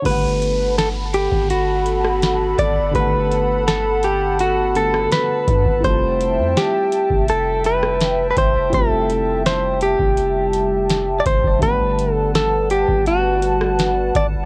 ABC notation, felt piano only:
X:1
M:4/4
L:1/8
Q:1/4=83
K:G
V:1 name="Felt piano"
[D,G,A,B,f]8 | [D,G,A,B,f]4- [D,G,A,B,f] [D,G,A,B,F]3 | [G,A,CE=F]8 | [G,A,CE=F]8 |
[D,G,A,B,f]8 |]